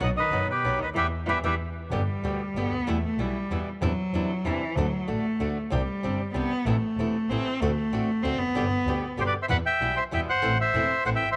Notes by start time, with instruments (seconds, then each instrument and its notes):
0.00 double bass B1, nylon-string guitar F#3 B3 D#4 F#4, cello F#3, bandoneon D#5 F#5
0.16 cello D#3, bandoneon B4 D#5
0.32 double bass F#1, nylon-string guitar B2 F#3 B3 D#4 F#4
0.48 cello B2, bandoneon G4 B4
0.64 double bass B1, nylon-string guitar B2 F#3 B3 D#4 F#4
0.78 double bass D2, cello D#3, bandoneon D#5
0.83 bandoneon B4
0.94 double bass E2, cello E3, nylon-string guitar E3 G3 B3, bandoneon G4 B4 E5
1.26 double bass E2, cello E3, nylon-string guitar E3 G3 B3, bandoneon G4 B4 E5
1.43 double bass E2, nylon-string guitar E3 G3 B3, cello E3, bandoneon G4 B4 E5
1.91 double bass G1, nylon-string guitar B2 D3 G3 B3 G4, cello G3
2.23 double bass D2, nylon-string guitar B2 D3 G3 B3 G4
2.55 double bass G1, nylon-string guitar B2 D3 G3 B3 G4, cello B3
2.70 double bass D2
2.87 double bass E2, nylon-string guitar B2 E3 G3 B3 E4, cello A3
3.04 cello A3
3.18 double bass B1, nylon-string guitar B2 E3 G3 B3 E4, cello G3
3.50 double bass E2, nylon-string guitar B2 E3 G3 B3 E4
3.81 double bass E2, nylon-string guitar C3 E3 G3 D4 E4, cello F#3
4.13 double bass E2, nylon-string guitar C3 E3 G3 D4 E4
4.44 double bass E2, nylon-string guitar C3 E3 G3 D4 E4, cello E3
4.76 double bass D2, nylon-string guitar D3 A3 D4 F#4, cello F#3
5.08 double bass A1, nylon-string guitar D3 A3 D4 F#4, cello A3
5.40 double bass D2, nylon-string guitar D3 A3 D4 F#4
5.70 double bass C2, nylon-string guitar C3 G3 C4 D4 G4, cello G3
6.03 double bass G1, nylon-string guitar C3 G3 C4 D4 G4
6.34 double bass C2, nylon-string guitar C3 G3 C4 D4 G4, cello B3
6.65 double bass A1, nylon-string guitar C3 E3 A3 B3 E4, cello A3
6.97 double bass E1, nylon-string guitar C3 E3 A3 B3 E4
7.29 double bass A1, nylon-string guitar C3 E3 A3 B3 E4, cello C4
7.61 double bass D2, nylon-string guitar D3 A3 C4 F#4, cello A3
7.92 double bass A1, nylon-string guitar D3 A3 C4 F#4
8.23 double bass D2, nylon-string guitar D3 A3 C4 F#4, cello C4
8.39 double bass F1, cello B3
8.54 double bass G1, nylon-string guitar B2 D3 G3 B3 G4
8.85 double bass D2, nylon-string guitar B2 D3 G3 B3 G4
9.17 double bass G1, nylon-string guitar B2 D3 G3 B3 G4, bandoneon G4 C5
9.26 bandoneon B4 D5
9.42 bandoneon C5 E5
9.48 double bass E2, nylon-string guitar B2 E3 G3 B3 E4, bandoneon B4 F#5
9.66 bandoneon E5 G5
9.81 double bass B1, nylon-string guitar B2 E3 G3 B3 E4
9.97 bandoneon C5 E5
10.11 double bass E2, nylon-string guitar B2 E3 G3 B3 E4, bandoneon E5 G5
10.28 double bass G1, bandoneon C5 F#5
10.42 double bass A1, nylon-string guitar E3 A3 C4 E4
10.61 bandoneon C5 E5
10.74 double bass E1, nylon-string guitar E3 A3 C4 E4
11.05 double bass A1, nylon-string guitar E3 A3 C4 E4, bandoneon C5 F#5
11.15 bandoneon E5 G5
11.22 double bass G#1
11.32 bandoneon C5 E5